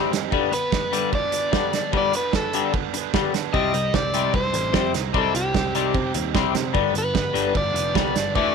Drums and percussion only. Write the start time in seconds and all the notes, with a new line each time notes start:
0.13 snare, closed hi-hat
0.32 kick
0.53 closed hi-hat
0.72 kick, snare
0.93 closed hi-hat
1.13 kick
1.32 closed hi-hat
1.53 kick, snare
1.73 snare, closed hi-hat
1.93 kick
2.13 closed hi-hat
2.33 kick, snare
2.53 closed hi-hat
2.74 kick
2.94 closed hi-hat
3.14 kick, snare
3.34 snare, closed hi-hat
3.54 kick
3.74 closed hi-hat
3.94 kick, snare
4.14 closed hi-hat
4.34 kick
4.54 closed hi-hat
4.74 kick, snare
4.94 snare, closed hi-hat
5.14 kick
5.35 closed hi-hat
5.54 kick, snare
5.75 closed hi-hat
5.94 kick
6.14 closed hi-hat
6.35 kick, snare
6.55 snare, closed hi-hat
6.75 kick
6.95 closed hi-hat
7.15 kick, snare
7.35 closed hi-hat
7.55 kick
7.76 closed hi-hat
7.95 kick, snare
8.16 snare, closed hi-hat
8.36 kick